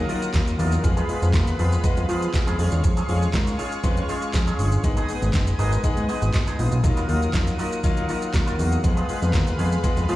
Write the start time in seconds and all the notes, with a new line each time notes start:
Already playing: A#4 F5 F#5 D#6, downlifter
0.08 F#3 A#3 D#4 F4 A#4, open hi-hat, shaker
0.22 muted clean electric guitar stroke, closed hi-hat, shaker
0.34 D#2 F#3 A#3 D#4 F4, muted clean electric guitar stroke, kick, snare, clap, closed hi-hat, shaker
0.47 muted clean electric guitar stroke, closed hi-hat, shaker
0.58 E2 F#3 A#3 D#4 F4 A#4, open hi-hat, shaker
0.72 F#3 A#3 F4 A#4, closed hi-hat, shaker
0.83 F2 G#3 B3 F4 G#4 B4 F5 B5, muted clean electric guitar stroke, kick, closed hi-hat, shaker
0.97 G#3 B3 F4 G#4, closed hi-hat, shaker
1.08 G#3 B3 F4 G#4, open hi-hat, shaker
1.22 F2, muted clean electric guitar stroke, closed hi-hat, shaker
1.33 D#2 G#3 B3 F4 A#4, muted clean electric guitar stroke, kick, snare, clap, closed hi-hat, shaker
1.47 muted clean electric guitar stroke, closed hi-hat, shaker
1.58 F2 G#3 B3 F4 G#4, open hi-hat, shaker
1.72 muted clean electric guitar stroke, closed hi-hat, shaker
1.84 G#3 B3 F4 B4, kick, closed hi-hat, shaker
1.97 F2, muted clean electric guitar stroke, closed hi-hat, shaker
2.08 F3 G#3 B3 F4 G#4, open hi-hat, shaker
2.22 muted clean electric guitar stroke, closed hi-hat, shaker
2.33 G#3 B3 F4 G#4, muted clean electric guitar stroke, kick, snare, clap, closed hi-hat, shaker
2.47 F2 G#3 B3 F4 G#4, closed hi-hat, shaker
2.58 F2 G#3 C#4 F4 G#4 C#5 C#6, open hi-hat, shaker
2.72 E2, muted clean electric guitar stroke, closed hi-hat, shaker
2.84 F2, muted clean electric guitar stroke, kick, closed hi-hat, shaker
2.97 G#3 C#4 F4 G#4, closed hi-hat, shaker
3.08 F2 G#3 C#4 F4 G#4, open hi-hat, shaker
3.22 muted clean electric guitar stroke, closed hi-hat, shaker
3.33 G#2 G#3 C#4 F4 A#4, muted clean electric guitar stroke, kick, snare, clap, closed hi-hat, shaker
3.47 muted clean electric guitar stroke, closed hi-hat, shaker
3.58 G#3 C#4 F4 G#4, open hi-hat, shaker
3.72 muted clean electric guitar stroke, closed hi-hat, shaker
3.83 F2 G#3 C#4 F4 B4, kick, closed hi-hat, shaker
3.97 muted clean electric guitar stroke, closed hi-hat, shaker
4.08 G#3 C#4 F4 G#4, open hi-hat, shaker
4.22 muted clean electric guitar stroke, closed hi-hat, shaker
4.33 F2 G#3 C#4 F4 G#4, muted clean electric guitar stroke, kick, snare, clap, closed hi-hat, shaker
4.47 G#3 C#4 F4 G#4, closed hi-hat, shaker
4.58 G1 G#3 C#4 F4 G#4, open hi-hat, shaker
4.72 muted clean electric guitar stroke, closed hi-hat, shaker
4.84 G#1 G#3 B3 D#4 G#4 B4 D#5 G#5 D#6, muted clean electric guitar stroke, kick, closed hi-hat, shaker
4.97 G#3 B3 D#4 G#4, closed hi-hat, shaker
5.08 G#3 B3 D#4 G#4, open hi-hat, shaker
5.22 G#1, muted clean electric guitar stroke, closed hi-hat, shaker
5.33 F#1 G#3 B3 D#4 G#4, muted clean electric guitar stroke, kick, snare, clap, closed hi-hat, shaker
5.47 muted clean electric guitar stroke, closed hi-hat, shaker
5.58 G#1 G#3 B3 D#4 G#4 A#4, open hi-hat, shaker
5.72 muted clean electric guitar stroke, closed hi-hat, shaker
5.84 G#1 G#3 B3 D#4 G#4, kick, closed hi-hat, shaker
5.97 G#2, muted clean electric guitar stroke, closed hi-hat, shaker
6.08 G#3 B3 D#4 G#4, open hi-hat, shaker
6.22 G#1, muted clean electric guitar stroke, closed hi-hat, shaker
6.33 G#1 G#3 B3 D#4 G#4, muted clean electric guitar stroke, kick, snare, clap, closed hi-hat, shaker
6.47 G#3 B3 D#4 G#4, closed hi-hat, shaker
6.58 A#1 G#3 B3 D#4 F4 G#4, open hi-hat, shaker
6.72 B1, muted clean electric guitar stroke, closed hi-hat, shaker
6.83 D#2 F#3 A#3 D#4 F4 A#4 F5 F#5, muted clean electric guitar stroke, kick, closed hi-hat, shaker
6.96 F#3 A#3 F4 A#4, closed hi-hat, shaker
7.08 D#2 F#3 A#3 D#4 F4 A#4, open hi-hat, shaker
7.22 muted clean electric guitar stroke, closed hi-hat, shaker
7.33 F2 F#3 A#3 D#4 F4, muted clean electric guitar stroke, kick, snare, clap, closed hi-hat, shaker
7.47 muted clean electric guitar stroke, closed hi-hat, shaker
7.58 F#3 A#3 D#4 F4 A#4, open hi-hat, shaker
7.72 muted clean electric guitar stroke, closed hi-hat, shaker
7.84 D#2 F#3 A#3 D#4 F4, kick, closed hi-hat, shaker
7.97 muted clean electric guitar stroke, closed hi-hat, shaker
8.08 F#3 A#3 D#4 F4 A#4, open hi-hat, shaker
8.22 muted clean electric guitar stroke, closed hi-hat, shaker
8.33 D#2 F#3 A#3 D#4 F4, muted clean electric guitar stroke, kick, snare, clap, closed hi-hat, shaker
8.46 F#3 A#3 F4 A#4, closed hi-hat, shaker
8.58 E2 F#3 A#3 D#4 F4 F#4 A#4, open hi-hat, shaker
8.72 muted clean electric guitar stroke, closed hi-hat, shaker
8.83 F2 G#3 B3 F4 G#4 B4 B5, muted clean electric guitar stroke, kick, closed hi-hat, shaker
8.96 G#3 B3 F4 G#4, closed hi-hat, shaker
9.08 G#3 B3 F4 G#4, open hi-hat, shaker
9.21 F2, muted clean electric guitar stroke, closed hi-hat, shaker
9.33 D#2 G#3 B3 F4 A#4, muted clean electric guitar stroke, kick, snare, clap, closed hi-hat, shaker
9.47 muted clean electric guitar stroke, closed hi-hat, shaker
9.58 F2 G#3 B3 F4 G#4, open hi-hat, shaker
9.72 muted clean electric guitar stroke, closed hi-hat, shaker
9.84 G#3 B3 F4 G#4, kick, closed hi-hat, shaker
9.97 F2, muted clean electric guitar stroke, closed hi-hat, shaker
10.08 F3 G#3 B3 F4 G#4, open hi-hat, shaker